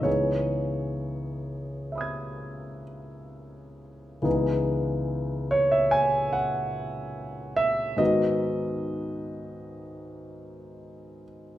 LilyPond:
<<
  \new Staff \with { instrumentName = "Grand piano" } { \time 9/8 \key cis \minor \tempo 4. = 48 << { r2 <e'' b'' dis''' gis'''>2~ <e'' b'' dis''' gis'''>8 | r1 r8 | r1 r8 | } \\ { cis''2. r4. | r4. cis''16 e''16 gis''8 fis''4. e''8 | dis''1 r8 | } >> }
  \new Staff \with { instrumentName = "Grand piano" } { \time 9/8 \key cis \minor <cis, e b dis' gis'>1~ <cis, e b dis' gis'>8 | <cis, e b dis' gis'>1~ <cis, e b dis' gis'>8 | <gis, dis b dis' fis'>1~ <gis, dis b dis' fis'>8 | }
>>